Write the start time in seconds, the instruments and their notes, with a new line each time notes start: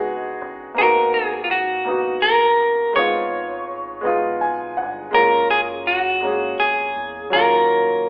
Already playing: fingered electric bass C#2, grand piano G#3 B3 D#4 F#4 G#4, clean electric guitar D#5
0.42 fingered electric bass A1
0.74 fingered electric bass G#1, grand piano A#3 B3 D#4, clean electric guitar A#4
0.80 grand piano F#4
1.14 clean electric guitar G#4
1.44 clean electric guitar F4
1.51 clean electric guitar F#4
1.85 grand piano A#3 B3 D#4
1.90 grand piano F#4
2.22 fingered electric bass F#1, clean electric guitar A#4
2.60 fingered electric bass A1
2.93 fingered electric bass G#1, grand piano G#3 B3 D#4, clean electric guitar C#5
2.98 grand piano F4
4.01 fingered electric bass B1, grand piano G#3 B3 D#4
4.06 grand piano F4
4.41 grand piano G#5
4.77 fingered electric bass G1, grand piano F#5
5.11 fingered electric bass F#1, grand piano G#3 A#3 C#4, clean electric guitar A#4
5.16 grand piano F4
5.51 clean electric guitar G#4
5.87 clean electric guitar F#4
6.20 grand piano G#3 A#3 C#4
6.26 grand piano G#4
6.60 fingered electric bass F1, clean electric guitar G#4
6.96 fingered electric bass E2
7.30 fingered electric bass D#2, grand piano F#3 A#3 C#4, clean electric guitar A#4
7.35 grand piano F4